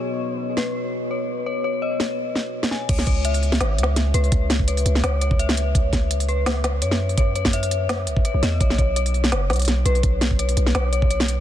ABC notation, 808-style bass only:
X:1
M:4/4
L:1/16
Q:"Swing 16ths" 1/4=168
K:C#m
V:1 name="808-style bass" clef=bass
z16 | z16 | C,,8 G,,,2 C,,4 C,,2 | C,,6 C,,2 C,,8- |
C,,12 F,,4- | F,,8- F,,2 C,,2 z B,,, E,,2 | B,,,8 F,,,2 B,,,4 B,,,2 | B,,,6 B,,,2 B,,,8 |]